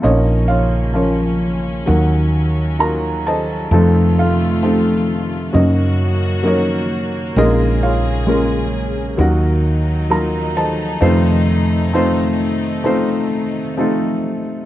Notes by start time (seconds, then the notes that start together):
0.02 A#1 A#2 C#3 F3 A#3 C#4 D#4 A#4 C#5 D#5
0.48 F4 C#5 F5
0.94 F3 A#3 C#4 A#4 C#5
1.86 D#2 D#3 F#3 A#3 D#4 F#4 A#4 F#5
2.79 A#3 D#4 F4 F#4 A#4 A#5
3.27 A4 C5 D#5 A5
3.71 F1 F2 F3 A3 C4 D#4 F4 A4
4.18 F4 A4 F5
4.62 F3 A3 C4 D#4 A4
5.52 F#1 F#2 D#3 F#3 A#3 C#4 D#4 F#4 A#4 D#5
6.43 F#3 A#3 C#4 D#4 A#4
6.47 C#5
7.36 A#1 A#2 C#3 G#3 A#3 C#4 D#4 F4 G#4 A#4 D#5
7.83 F4 C#5 F5
8.27 G#3 A#3 C#4 F4 A#4
9.17 D#2 D#3 F#3 A#3 D#4 F#4 A#4 F#5
10.10 F#3 A#3 D#4 F4 A#4 A#5
10.57 A4 C5 D#5 A5
11.01 F1 F2 A3 C4 D#4 F4 C5
11.93 A3 C4 D#4 F4 C5
12.84 A3 C4 D#4 F4 C5
13.77 A3 C4 D#4 F4 A4